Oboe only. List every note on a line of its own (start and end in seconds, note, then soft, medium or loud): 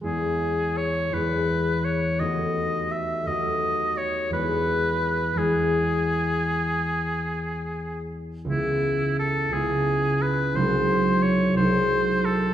0.04 0.79 G#4 medium
0.77 1.15 C#5 medium
1.14 1.86 B4 soft
1.85 2.21 C#5 soft
2.20 2.93 D#5 medium
2.91 3.28 E5 medium
3.27 3.99 D#5 medium
3.98 4.33 C#5 medium
4.33 5.39 B4 medium
5.38 8.15 G#4 medium
8.49 9.15 E4 medium
9.19 9.55 A4 medium
9.54 10.23 G#4 medium
10.22 10.57 B4 medium
10.56 11.24 C5 medium
11.23 11.56 C#5 medium
11.57 12.26 C5 medium
12.25 12.54 A4 medium